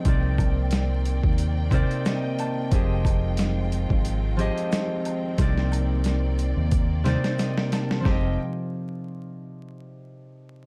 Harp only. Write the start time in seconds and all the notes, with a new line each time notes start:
Already playing: F3 G4 G#4 D#5
0.04 C3 C4 D#4 A#4 D5
1.70 C3 C4 D#4 A#4 C5
1.75 D5
2.05 D#5
2.23 G5
2.39 A5
2.71 F3 C4 G4 G#4
2.75 D#5
4.37 F3 C4 G4 G#4 D#5
5.38 C3 C4 D#4 A#4
5.42 D5
7.04 C3 C4 D#4 A#4 C5
7.08 D5
7.38 D#5
7.57 G5
7.73 A5
8.00 F3 C4
8.05 G4 G#4
8.10 D#5